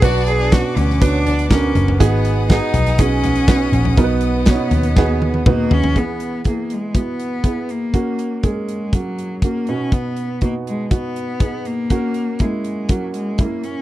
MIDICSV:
0, 0, Header, 1, 7, 480
1, 0, Start_track
1, 0, Tempo, 495050
1, 23, Time_signature, 4, 2, 24, 8
1, 13397, End_track
2, 0, Start_track
2, 0, Title_t, "String section"
2, 0, Program_c, 0, 48
2, 0, Note_on_c, 0, 78, 66
2, 11, Note_on_c, 0, 59, 76
2, 18, Note_on_c, 0, 86, 95
2, 1893, Note_off_c, 0, 78, 0
2, 1918, Note_off_c, 0, 86, 0
2, 1938, Note_on_c, 0, 80, 69
2, 1940, Note_on_c, 0, 87, 91
2, 1941, Note_on_c, 0, 78, 71
2, 3811, Note_off_c, 0, 59, 0
2, 3836, Note_off_c, 0, 80, 0
2, 3856, Note_on_c, 0, 75, 73
2, 3858, Note_on_c, 0, 71, 78
2, 5736, Note_off_c, 0, 78, 0
2, 5736, Note_off_c, 0, 87, 0
2, 5755, Note_off_c, 0, 75, 0
2, 5756, Note_off_c, 0, 71, 0
2, 13397, End_track
3, 0, Start_track
3, 0, Title_t, "Violin section"
3, 0, Program_c, 1, 48
3, 20, Note_on_c, 1, 74, 127
3, 26, Note_on_c, 1, 62, 119
3, 359, Note_off_c, 1, 74, 0
3, 362, Note_off_c, 1, 62, 0
3, 388, Note_on_c, 1, 74, 83
3, 394, Note_on_c, 1, 62, 91
3, 482, Note_off_c, 1, 74, 0
3, 485, Note_off_c, 1, 62, 0
3, 509, Note_on_c, 1, 73, 85
3, 511, Note_on_c, 1, 61, 80
3, 698, Note_off_c, 1, 73, 0
3, 699, Note_off_c, 1, 61, 0
3, 740, Note_on_c, 1, 59, 81
3, 741, Note_on_c, 1, 71, 86
3, 932, Note_off_c, 1, 59, 0
3, 933, Note_off_c, 1, 71, 0
3, 988, Note_on_c, 1, 61, 84
3, 992, Note_on_c, 1, 73, 92
3, 1177, Note_off_c, 1, 61, 0
3, 1179, Note_off_c, 1, 73, 0
3, 1221, Note_on_c, 1, 62, 76
3, 1222, Note_on_c, 1, 74, 80
3, 1413, Note_off_c, 1, 62, 0
3, 1413, Note_off_c, 1, 74, 0
3, 13397, End_track
4, 0, Start_track
4, 0, Title_t, "Upright piano"
4, 0, Program_c, 2, 0
4, 0, Control_c, 2, 64, 127
4, 18, Note_on_c, 2, 47, 69
4, 18, Note_on_c, 2, 59, 95
4, 18, Note_on_c, 2, 62, 91
4, 18, Note_on_c, 2, 66, 86
4, 21, Note_on_c, 2, 71, 110
4, 37, Control_c, 2, 64, 0
4, 229, Control_c, 2, 64, 127
4, 459, Note_off_c, 2, 66, 0
4, 460, Note_off_c, 2, 59, 0
4, 460, Note_off_c, 2, 62, 0
4, 461, Note_off_c, 2, 71, 0
4, 499, Note_on_c, 2, 59, 73
4, 499, Note_on_c, 2, 62, 74
4, 500, Note_on_c, 2, 71, 83
4, 503, Note_on_c, 2, 66, 73
4, 700, Note_off_c, 2, 47, 0
4, 940, Note_off_c, 2, 59, 0
4, 940, Note_off_c, 2, 62, 0
4, 940, Note_off_c, 2, 71, 0
4, 942, Note_off_c, 2, 66, 0
4, 980, Note_on_c, 2, 59, 77
4, 982, Note_on_c, 2, 66, 64
4, 983, Note_on_c, 2, 62, 65
4, 986, Note_on_c, 2, 71, 83
4, 1420, Note_off_c, 2, 59, 0
4, 1421, Note_off_c, 2, 62, 0
4, 1421, Note_off_c, 2, 66, 0
4, 1422, Note_off_c, 2, 71, 0
4, 1460, Note_on_c, 2, 59, 74
4, 1460, Note_on_c, 2, 66, 63
4, 1462, Note_on_c, 2, 50, 68
4, 1464, Note_on_c, 2, 70, 80
4, 1899, Note_off_c, 2, 59, 0
4, 1899, Note_off_c, 2, 66, 0
4, 1900, Note_off_c, 2, 50, 0
4, 1901, Note_off_c, 2, 70, 0
4, 1939, Note_on_c, 2, 63, 90
4, 1940, Note_on_c, 2, 59, 95
4, 1940, Note_on_c, 2, 66, 83
4, 1940, Note_on_c, 2, 68, 120
4, 1942, Note_on_c, 2, 44, 71
4, 1951, Control_c, 2, 64, 0
4, 2103, Control_c, 2, 64, 127
4, 2378, Note_off_c, 2, 63, 0
4, 2379, Note_off_c, 2, 59, 0
4, 2379, Note_off_c, 2, 66, 0
4, 2379, Note_off_c, 2, 68, 0
4, 2421, Note_on_c, 2, 63, 76
4, 2424, Note_on_c, 2, 68, 84
4, 2426, Note_on_c, 2, 59, 76
4, 2429, Note_on_c, 2, 66, 72
4, 2620, Note_off_c, 2, 44, 0
4, 2859, Note_off_c, 2, 63, 0
4, 2861, Note_off_c, 2, 59, 0
4, 2861, Note_off_c, 2, 68, 0
4, 2863, Note_off_c, 2, 66, 0
4, 2903, Note_on_c, 2, 68, 85
4, 2905, Note_on_c, 2, 63, 72
4, 2906, Note_on_c, 2, 59, 71
4, 2906, Note_on_c, 2, 66, 71
4, 3339, Note_off_c, 2, 68, 0
4, 3341, Note_off_c, 2, 59, 0
4, 3341, Note_off_c, 2, 63, 0
4, 3341, Note_off_c, 2, 66, 0
4, 3375, Note_on_c, 2, 63, 64
4, 3377, Note_on_c, 2, 59, 77
4, 3379, Note_on_c, 2, 66, 68
4, 3379, Note_on_c, 2, 71, 78
4, 3815, Note_off_c, 2, 63, 0
4, 3816, Note_off_c, 2, 59, 0
4, 3817, Note_off_c, 2, 66, 0
4, 3817, Note_off_c, 2, 71, 0
4, 3855, Note_on_c, 2, 59, 96
4, 3856, Note_on_c, 2, 70, 86
4, 3857, Note_on_c, 2, 47, 61
4, 3857, Note_on_c, 2, 66, 89
4, 3858, Note_on_c, 2, 63, 95
4, 3869, Control_c, 2, 64, 0
4, 3914, Note_off_c, 2, 70, 0
4, 3914, Note_on_c, 2, 71, 104
4, 4014, Control_c, 2, 64, 127
4, 4295, Note_off_c, 2, 59, 0
4, 4296, Note_off_c, 2, 63, 0
4, 4296, Note_off_c, 2, 66, 0
4, 4324, Note_off_c, 2, 71, 0
4, 4339, Note_on_c, 2, 59, 70
4, 4346, Note_on_c, 2, 61, 55
4, 4346, Note_on_c, 2, 66, 70
4, 4350, Note_on_c, 2, 73, 77
4, 4398, Note_off_c, 2, 61, 0
4, 4404, Note_on_c, 2, 63, 77
4, 4536, Note_off_c, 2, 47, 0
4, 4776, Note_off_c, 2, 59, 0
4, 4780, Note_off_c, 2, 66, 0
4, 4782, Note_off_c, 2, 73, 0
4, 4809, Note_off_c, 2, 63, 0
4, 4824, Note_on_c, 2, 59, 83
4, 4827, Note_on_c, 2, 66, 75
4, 4829, Note_on_c, 2, 63, 81
4, 4829, Note_on_c, 2, 68, 99
4, 5259, Note_off_c, 2, 59, 0
4, 5260, Note_off_c, 2, 66, 0
4, 5261, Note_off_c, 2, 63, 0
4, 5261, Note_off_c, 2, 68, 0
4, 5302, Note_on_c, 2, 71, 96
4, 5303, Note_on_c, 2, 59, 83
4, 5303, Note_on_c, 2, 63, 84
4, 5305, Note_on_c, 2, 66, 80
4, 5738, Note_off_c, 2, 59, 0
4, 5738, Note_off_c, 2, 63, 0
4, 5738, Note_off_c, 2, 71, 0
4, 5739, Note_off_c, 2, 66, 0
4, 5775, Note_on_c, 2, 52, 44
4, 5776, Note_on_c, 2, 64, 64
4, 5778, Note_on_c, 2, 68, 79
4, 5780, Note_on_c, 2, 59, 72
4, 5785, Control_c, 2, 64, 0
4, 5951, Control_c, 2, 64, 127
4, 6215, Note_off_c, 2, 64, 0
4, 6216, Note_off_c, 2, 68, 0
4, 6217, Note_off_c, 2, 59, 0
4, 6263, Note_on_c, 2, 59, 55
4, 6268, Note_on_c, 2, 64, 53
4, 6269, Note_on_c, 2, 68, 63
4, 6455, Note_off_c, 2, 52, 0
4, 6699, Note_off_c, 2, 59, 0
4, 6701, Note_off_c, 2, 64, 0
4, 6702, Note_off_c, 2, 68, 0
4, 6736, Note_on_c, 2, 59, 54
4, 6737, Note_on_c, 2, 64, 51
4, 6738, Note_on_c, 2, 66, 57
4, 7175, Note_off_c, 2, 59, 0
4, 7176, Note_off_c, 2, 64, 0
4, 7176, Note_off_c, 2, 66, 0
4, 7220, Note_on_c, 2, 59, 55
4, 7221, Note_on_c, 2, 64, 54
4, 7224, Note_on_c, 2, 68, 60
4, 7658, Note_off_c, 2, 59, 0
4, 7658, Note_off_c, 2, 64, 0
4, 7660, Note_off_c, 2, 68, 0
4, 7697, Note_on_c, 2, 58, 72
4, 7702, Note_on_c, 2, 61, 72
4, 7703, Note_on_c, 2, 66, 85
4, 7708, Control_c, 2, 64, 0
4, 7867, Control_c, 2, 64, 127
4, 8136, Note_off_c, 2, 58, 0
4, 8139, Note_off_c, 2, 61, 0
4, 8139, Note_off_c, 2, 66, 0
4, 8178, Note_on_c, 2, 61, 56
4, 8179, Note_on_c, 2, 58, 60
4, 8179, Note_on_c, 2, 68, 65
4, 8618, Note_off_c, 2, 58, 0
4, 8618, Note_off_c, 2, 61, 0
4, 8618, Note_off_c, 2, 68, 0
4, 8672, Note_on_c, 2, 58, 55
4, 8674, Note_on_c, 2, 61, 49
4, 8674, Note_on_c, 2, 66, 61
4, 9105, Note_off_c, 2, 58, 0
4, 9106, Note_off_c, 2, 61, 0
4, 9106, Note_off_c, 2, 66, 0
4, 9153, Note_on_c, 2, 58, 60
4, 9154, Note_on_c, 2, 61, 55
4, 9156, Note_on_c, 2, 66, 61
4, 9379, Note_off_c, 2, 66, 0
4, 9386, Note_off_c, 2, 58, 0
4, 9386, Note_off_c, 2, 61, 0
4, 9389, Note_on_c, 2, 63, 53
4, 9391, Control_c, 2, 64, 0
4, 9391, Note_on_c, 2, 59, 62
4, 9392, Note_on_c, 2, 47, 55
4, 9394, Note_on_c, 2, 66, 65
4, 9570, Control_c, 2, 64, 127
4, 10045, Note_off_c, 2, 63, 0
4, 10046, Note_off_c, 2, 59, 0
4, 10047, Note_off_c, 2, 66, 0
4, 10067, Note_off_c, 2, 47, 0
4, 10098, Note_on_c, 2, 66, 68
4, 10099, Note_on_c, 2, 63, 59
4, 10101, Note_on_c, 2, 59, 65
4, 10539, Note_off_c, 2, 66, 0
4, 10540, Note_off_c, 2, 63, 0
4, 10541, Note_off_c, 2, 59, 0
4, 10576, Note_on_c, 2, 59, 58
4, 10578, Note_on_c, 2, 66, 68
4, 10579, Note_on_c, 2, 63, 48
4, 11019, Note_off_c, 2, 59, 0
4, 11020, Note_off_c, 2, 63, 0
4, 11020, Note_off_c, 2, 66, 0
4, 11062, Note_on_c, 2, 59, 54
4, 11062, Note_on_c, 2, 68, 63
4, 11063, Note_on_c, 2, 63, 53
4, 11502, Note_off_c, 2, 59, 0
4, 11502, Note_off_c, 2, 68, 0
4, 11503, Note_off_c, 2, 63, 0
4, 11547, Note_on_c, 2, 58, 81
4, 11548, Note_on_c, 2, 61, 73
4, 11550, Note_on_c, 2, 66, 86
4, 11555, Control_c, 2, 64, 0
4, 11703, Control_c, 2, 64, 127
4, 11985, Note_off_c, 2, 58, 0
4, 11986, Note_off_c, 2, 61, 0
4, 11987, Note_off_c, 2, 66, 0
4, 12030, Note_on_c, 2, 58, 59
4, 12031, Note_on_c, 2, 61, 54
4, 12031, Note_on_c, 2, 64, 69
4, 12467, Note_off_c, 2, 58, 0
4, 12468, Note_off_c, 2, 61, 0
4, 12468, Note_off_c, 2, 64, 0
4, 12502, Note_on_c, 2, 58, 60
4, 12502, Note_on_c, 2, 61, 52
4, 12505, Note_on_c, 2, 66, 66
4, 12944, Note_off_c, 2, 58, 0
4, 12944, Note_off_c, 2, 61, 0
4, 12945, Note_off_c, 2, 66, 0
4, 12989, Note_on_c, 2, 58, 58
4, 12989, Note_on_c, 2, 61, 49
4, 12989, Note_on_c, 2, 64, 64
4, 13397, Note_off_c, 2, 58, 0
4, 13397, Note_off_c, 2, 61, 0
4, 13397, Note_off_c, 2, 64, 0
4, 13397, End_track
5, 0, Start_track
5, 0, Title_t, "Cello"
5, 0, Program_c, 3, 42
5, 36, Note_on_c, 3, 66, 104
5, 261, Note_off_c, 3, 66, 0
5, 267, Note_on_c, 3, 68, 108
5, 506, Note_on_c, 3, 66, 92
5, 521, Note_off_c, 3, 68, 0
5, 754, Note_on_c, 3, 61, 88
5, 769, Note_off_c, 3, 66, 0
5, 992, Note_on_c, 3, 62, 94
5, 1007, Note_off_c, 3, 61, 0
5, 1460, Note_off_c, 3, 62, 0
5, 1465, Note_on_c, 3, 61, 84
5, 1908, Note_off_c, 3, 61, 0
5, 1956, Note_on_c, 3, 59, 91
5, 2394, Note_off_c, 3, 59, 0
5, 2429, Note_on_c, 3, 63, 87
5, 2916, Note_on_c, 3, 61, 100
5, 2930, Note_off_c, 3, 63, 0
5, 3868, Note_on_c, 3, 59, 86
5, 3883, Note_off_c, 3, 61, 0
5, 5300, Note_off_c, 3, 59, 0
5, 5321, Note_on_c, 3, 58, 100
5, 5557, Note_on_c, 3, 61, 119
5, 5571, Note_off_c, 3, 58, 0
5, 5799, Note_on_c, 3, 59, 97
5, 5814, Note_off_c, 3, 61, 0
5, 6266, Note_off_c, 3, 59, 0
5, 6277, Note_on_c, 3, 58, 68
5, 6519, Note_on_c, 3, 56, 74
5, 6534, Note_off_c, 3, 58, 0
5, 6752, Note_on_c, 3, 59, 85
5, 6767, Note_off_c, 3, 56, 0
5, 7470, Note_on_c, 3, 58, 83
5, 7485, Note_off_c, 3, 59, 0
5, 8179, Note_off_c, 3, 58, 0
5, 8185, Note_on_c, 3, 56, 68
5, 8671, Note_on_c, 3, 54, 78
5, 8686, Note_off_c, 3, 56, 0
5, 9134, Note_off_c, 3, 54, 0
5, 9140, Note_on_c, 3, 58, 79
5, 9395, Note_on_c, 3, 61, 81
5, 9410, Note_off_c, 3, 58, 0
5, 9629, Note_on_c, 3, 59, 85
5, 9644, Note_off_c, 3, 61, 0
5, 10105, Note_off_c, 3, 59, 0
5, 10111, Note_on_c, 3, 58, 72
5, 10216, Note_off_c, 3, 58, 0
5, 10354, Note_on_c, 3, 56, 71
5, 10571, Note_off_c, 3, 56, 0
5, 10605, Note_on_c, 3, 59, 88
5, 11314, Note_on_c, 3, 58, 86
5, 11329, Note_off_c, 3, 59, 0
5, 12045, Note_on_c, 3, 56, 70
5, 12060, Note_off_c, 3, 58, 0
5, 12526, Note_on_c, 3, 54, 69
5, 12541, Note_off_c, 3, 56, 0
5, 12746, Note_off_c, 3, 54, 0
5, 12751, Note_on_c, 3, 56, 69
5, 12997, Note_on_c, 3, 58, 69
5, 13011, Note_off_c, 3, 56, 0
5, 13227, Note_on_c, 3, 61, 78
5, 13242, Note_off_c, 3, 58, 0
5, 13397, Note_off_c, 3, 61, 0
5, 13397, End_track
6, 0, Start_track
6, 0, Title_t, "Picked electric bass"
6, 0, Program_c, 4, 34
6, 23, Note_on_c, 4, 35, 119
6, 592, Note_off_c, 4, 35, 0
6, 742, Note_on_c, 4, 38, 86
6, 1661, Note_off_c, 4, 38, 0
6, 1698, Note_on_c, 4, 30, 85
6, 1922, Note_off_c, 4, 30, 0
6, 1946, Note_on_c, 4, 32, 111
6, 2511, Note_off_c, 4, 32, 0
6, 2656, Note_on_c, 4, 35, 90
6, 3576, Note_off_c, 4, 35, 0
6, 3611, Note_on_c, 4, 34, 78
6, 3836, Note_off_c, 4, 34, 0
6, 3852, Note_on_c, 4, 35, 107
6, 4423, Note_off_c, 4, 35, 0
6, 4570, Note_on_c, 4, 39, 86
6, 5492, Note_off_c, 4, 39, 0
6, 5537, Note_on_c, 4, 39, 76
6, 5759, Note_off_c, 4, 39, 0
6, 13397, End_track
7, 0, Start_track
7, 0, Title_t, "Drums"
7, 21, Note_on_c, 9, 42, 81
7, 22, Note_on_c, 9, 36, 103
7, 118, Note_off_c, 9, 42, 0
7, 119, Note_off_c, 9, 36, 0
7, 259, Note_on_c, 9, 42, 65
7, 356, Note_off_c, 9, 42, 0
7, 503, Note_on_c, 9, 42, 86
7, 507, Note_on_c, 9, 36, 96
7, 509, Note_on_c, 9, 38, 106
7, 600, Note_off_c, 9, 42, 0
7, 604, Note_off_c, 9, 36, 0
7, 606, Note_off_c, 9, 38, 0
7, 746, Note_on_c, 9, 43, 72
7, 748, Note_on_c, 9, 42, 79
7, 843, Note_off_c, 9, 43, 0
7, 845, Note_off_c, 9, 42, 0
7, 872, Note_on_c, 9, 38, 38
7, 969, Note_off_c, 9, 38, 0
7, 985, Note_on_c, 9, 36, 113
7, 990, Note_on_c, 9, 42, 100
7, 1082, Note_off_c, 9, 36, 0
7, 1087, Note_off_c, 9, 42, 0
7, 1227, Note_on_c, 9, 42, 67
7, 1227, Note_on_c, 9, 43, 60
7, 1324, Note_off_c, 9, 42, 0
7, 1324, Note_off_c, 9, 43, 0
7, 1347, Note_on_c, 9, 42, 62
7, 1444, Note_off_c, 9, 42, 0
7, 1460, Note_on_c, 9, 36, 106
7, 1462, Note_on_c, 9, 42, 91
7, 1464, Note_on_c, 9, 38, 117
7, 1557, Note_off_c, 9, 36, 0
7, 1559, Note_off_c, 9, 42, 0
7, 1561, Note_off_c, 9, 38, 0
7, 1699, Note_on_c, 9, 42, 71
7, 1703, Note_on_c, 9, 43, 62
7, 1796, Note_off_c, 9, 42, 0
7, 1799, Note_off_c, 9, 43, 0
7, 1826, Note_on_c, 9, 43, 69
7, 1923, Note_off_c, 9, 43, 0
7, 1944, Note_on_c, 9, 36, 98
7, 1947, Note_on_c, 9, 42, 91
7, 2041, Note_off_c, 9, 36, 0
7, 2044, Note_off_c, 9, 42, 0
7, 2179, Note_on_c, 9, 42, 77
7, 2276, Note_off_c, 9, 42, 0
7, 2420, Note_on_c, 9, 42, 78
7, 2422, Note_on_c, 9, 36, 94
7, 2425, Note_on_c, 9, 38, 99
7, 2516, Note_off_c, 9, 42, 0
7, 2519, Note_off_c, 9, 36, 0
7, 2522, Note_off_c, 9, 38, 0
7, 2654, Note_on_c, 9, 43, 75
7, 2657, Note_on_c, 9, 42, 76
7, 2751, Note_off_c, 9, 43, 0
7, 2753, Note_off_c, 9, 42, 0
7, 2778, Note_on_c, 9, 42, 61
7, 2785, Note_on_c, 9, 38, 36
7, 2875, Note_off_c, 9, 42, 0
7, 2882, Note_off_c, 9, 38, 0
7, 2893, Note_on_c, 9, 42, 103
7, 2898, Note_on_c, 9, 36, 111
7, 2990, Note_off_c, 9, 42, 0
7, 2995, Note_off_c, 9, 36, 0
7, 3138, Note_on_c, 9, 42, 70
7, 3138, Note_on_c, 9, 43, 66
7, 3235, Note_off_c, 9, 42, 0
7, 3235, Note_off_c, 9, 43, 0
7, 3253, Note_on_c, 9, 42, 60
7, 3350, Note_off_c, 9, 42, 0
7, 3373, Note_on_c, 9, 36, 112
7, 3374, Note_on_c, 9, 42, 82
7, 3375, Note_on_c, 9, 38, 115
7, 3470, Note_off_c, 9, 36, 0
7, 3471, Note_off_c, 9, 42, 0
7, 3472, Note_off_c, 9, 38, 0
7, 3615, Note_on_c, 9, 42, 73
7, 3618, Note_on_c, 9, 43, 63
7, 3712, Note_off_c, 9, 42, 0
7, 3715, Note_off_c, 9, 43, 0
7, 3734, Note_on_c, 9, 43, 68
7, 3831, Note_off_c, 9, 43, 0
7, 3852, Note_on_c, 9, 42, 81
7, 3854, Note_on_c, 9, 36, 100
7, 3949, Note_off_c, 9, 42, 0
7, 3951, Note_off_c, 9, 36, 0
7, 4079, Note_on_c, 9, 42, 69
7, 4176, Note_off_c, 9, 42, 0
7, 4321, Note_on_c, 9, 42, 87
7, 4326, Note_on_c, 9, 38, 106
7, 4335, Note_on_c, 9, 36, 100
7, 4418, Note_off_c, 9, 42, 0
7, 4423, Note_off_c, 9, 38, 0
7, 4432, Note_off_c, 9, 36, 0
7, 4568, Note_on_c, 9, 43, 68
7, 4570, Note_on_c, 9, 42, 74
7, 4665, Note_off_c, 9, 43, 0
7, 4667, Note_off_c, 9, 42, 0
7, 4686, Note_on_c, 9, 42, 64
7, 4783, Note_off_c, 9, 42, 0
7, 4811, Note_on_c, 9, 38, 60
7, 4815, Note_on_c, 9, 36, 109
7, 4908, Note_off_c, 9, 38, 0
7, 4912, Note_off_c, 9, 36, 0
7, 5058, Note_on_c, 9, 48, 78
7, 5155, Note_off_c, 9, 48, 0
7, 5177, Note_on_c, 9, 48, 66
7, 5274, Note_off_c, 9, 48, 0
7, 5295, Note_on_c, 9, 36, 118
7, 5299, Note_on_c, 9, 47, 87
7, 5392, Note_off_c, 9, 36, 0
7, 5396, Note_off_c, 9, 47, 0
7, 5536, Note_on_c, 9, 43, 100
7, 5633, Note_off_c, 9, 43, 0
7, 5658, Note_on_c, 9, 43, 96
7, 5755, Note_off_c, 9, 43, 0
7, 5777, Note_on_c, 9, 36, 71
7, 5779, Note_on_c, 9, 42, 57
7, 5874, Note_off_c, 9, 36, 0
7, 5876, Note_off_c, 9, 42, 0
7, 6012, Note_on_c, 9, 42, 59
7, 6109, Note_off_c, 9, 42, 0
7, 6248, Note_on_c, 9, 42, 57
7, 6257, Note_on_c, 9, 36, 76
7, 6345, Note_off_c, 9, 42, 0
7, 6354, Note_off_c, 9, 36, 0
7, 6497, Note_on_c, 9, 42, 58
7, 6594, Note_off_c, 9, 42, 0
7, 6735, Note_on_c, 9, 36, 83
7, 6735, Note_on_c, 9, 42, 72
7, 6832, Note_off_c, 9, 36, 0
7, 6832, Note_off_c, 9, 42, 0
7, 6977, Note_on_c, 9, 42, 55
7, 7074, Note_off_c, 9, 42, 0
7, 7212, Note_on_c, 9, 36, 89
7, 7212, Note_on_c, 9, 42, 68
7, 7309, Note_off_c, 9, 36, 0
7, 7309, Note_off_c, 9, 42, 0
7, 7456, Note_on_c, 9, 42, 48
7, 7553, Note_off_c, 9, 42, 0
7, 7696, Note_on_c, 9, 36, 74
7, 7700, Note_on_c, 9, 42, 62
7, 7793, Note_off_c, 9, 36, 0
7, 7797, Note_off_c, 9, 42, 0
7, 7939, Note_on_c, 9, 42, 56
7, 8036, Note_off_c, 9, 42, 0
7, 8176, Note_on_c, 9, 42, 67
7, 8179, Note_on_c, 9, 36, 73
7, 8273, Note_off_c, 9, 42, 0
7, 8276, Note_off_c, 9, 36, 0
7, 8421, Note_on_c, 9, 42, 56
7, 8518, Note_off_c, 9, 42, 0
7, 8657, Note_on_c, 9, 36, 84
7, 8658, Note_on_c, 9, 42, 76
7, 8754, Note_off_c, 9, 36, 0
7, 8755, Note_off_c, 9, 42, 0
7, 8906, Note_on_c, 9, 42, 55
7, 9003, Note_off_c, 9, 42, 0
7, 9135, Note_on_c, 9, 36, 89
7, 9136, Note_on_c, 9, 42, 69
7, 9232, Note_off_c, 9, 36, 0
7, 9233, Note_off_c, 9, 42, 0
7, 9374, Note_on_c, 9, 42, 48
7, 9471, Note_off_c, 9, 42, 0
7, 9619, Note_on_c, 9, 36, 87
7, 9619, Note_on_c, 9, 42, 62
7, 9716, Note_off_c, 9, 36, 0
7, 9716, Note_off_c, 9, 42, 0
7, 9856, Note_on_c, 9, 42, 57
7, 9953, Note_off_c, 9, 42, 0
7, 10095, Note_on_c, 9, 42, 61
7, 10101, Note_on_c, 9, 36, 70
7, 10192, Note_off_c, 9, 42, 0
7, 10198, Note_off_c, 9, 36, 0
7, 10348, Note_on_c, 9, 42, 60
7, 10445, Note_off_c, 9, 42, 0
7, 10578, Note_on_c, 9, 42, 86
7, 10579, Note_on_c, 9, 36, 88
7, 10675, Note_off_c, 9, 42, 0
7, 10676, Note_off_c, 9, 36, 0
7, 10822, Note_on_c, 9, 42, 58
7, 10919, Note_off_c, 9, 42, 0
7, 11053, Note_on_c, 9, 42, 67
7, 11057, Note_on_c, 9, 36, 97
7, 11150, Note_off_c, 9, 42, 0
7, 11154, Note_off_c, 9, 36, 0
7, 11298, Note_on_c, 9, 42, 46
7, 11395, Note_off_c, 9, 42, 0
7, 11539, Note_on_c, 9, 42, 65
7, 11542, Note_on_c, 9, 36, 80
7, 11636, Note_off_c, 9, 42, 0
7, 11638, Note_off_c, 9, 36, 0
7, 11774, Note_on_c, 9, 42, 53
7, 11871, Note_off_c, 9, 42, 0
7, 12013, Note_on_c, 9, 42, 68
7, 12023, Note_on_c, 9, 36, 75
7, 12110, Note_off_c, 9, 42, 0
7, 12120, Note_off_c, 9, 36, 0
7, 12260, Note_on_c, 9, 42, 53
7, 12357, Note_off_c, 9, 42, 0
7, 12496, Note_on_c, 9, 42, 80
7, 12501, Note_on_c, 9, 36, 88
7, 12593, Note_off_c, 9, 42, 0
7, 12598, Note_off_c, 9, 36, 0
7, 12739, Note_on_c, 9, 42, 58
7, 12836, Note_off_c, 9, 42, 0
7, 12974, Note_on_c, 9, 42, 69
7, 12980, Note_on_c, 9, 36, 90
7, 13071, Note_off_c, 9, 42, 0
7, 13077, Note_off_c, 9, 36, 0
7, 13221, Note_on_c, 9, 42, 46
7, 13318, Note_off_c, 9, 42, 0
7, 13397, End_track
0, 0, End_of_file